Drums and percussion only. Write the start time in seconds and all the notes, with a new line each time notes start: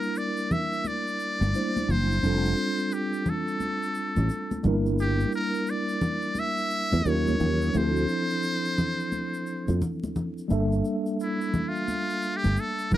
0.03 shaker
0.15 shaker
0.37 shaker
0.51 low conga, shaker
0.73 shaker
0.85 high conga, shaker
1.07 shaker
1.20 shaker
1.42 high conga, shaker
1.54 shaker
1.76 high conga, shaker
1.90 low conga, shaker
2.11 shaker
2.24 shaker
2.45 shaker
2.57 shaker
2.79 shaker
2.92 shaker
3.13 shaker
3.26 low conga, shaker
3.48 shaker
3.60 high conga, shaker
3.83 shaker
3.95 shaker
4.16 high conga, shaker
4.29 shaker
4.51 high conga, shaker
4.64 low conga, shaker
4.86 shaker
4.99 shaker
5.20 shaker
5.32 shaker
5.54 shaker
5.67 shaker
5.89 shaker
6.01 low conga, shaker
6.22 shaker
6.35 high conga, shaker
6.58 shaker
6.70 shaker
6.92 high conga, shaker
7.05 shaker
7.27 high conga, shaker
7.40 low conga, shaker
7.62 shaker
7.74 shaker
7.96 shaker
8.09 shaker
8.30 shaker
8.43 shaker
8.65 shaker
8.78 low conga, shaker
9.00 shaker
9.12 high conga, shaker
9.34 shaker
9.46 shaker
9.68 high conga, shaker
9.82 low conga, shaker
10.04 high conga, shaker
10.16 low conga, shaker
10.38 shaker
10.50 shaker
10.72 shaker
10.85 shaker
11.06 shaker
11.20 shaker
11.41 shaker
11.54 high conga, low conga, shaker
11.76 shaker
11.88 high conga, shaker
12.10 shaker
12.22 shaker
12.44 high conga, shaker
12.57 shaker
12.79 shaker
12.91 low conga, shaker